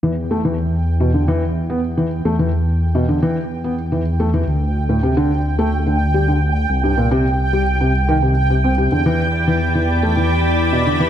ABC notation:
X:1
M:4/4
L:1/16
Q:1/4=108
K:Em
V:1 name="Synth texture"
g16- | g16- | g16- | g16- |
g16 |]
V:2 name="Ambient pad"
z16 | z16 | z16 | z16 |
[EGd]16 |]
V:3 name="Felt piano" clef=bass
E, z A, E, z3 B,, D, E, z2 B, z E, z | A, E, z3 B,, D, E, z2 B, z E, z A, E, | z3 A,, C, D, z2 A, z D, z G, D, z2 | z G,, _B,, C, z2 G, z C, z _E, C, z C, C C, |
D, E, z2 E, z E, z A, E, z3 B,, D, E, |]
V:4 name="Detuned saw bass" clef=bass
E,,16 | E,,16 | D,,16 | C,,16 |
E,,16 |]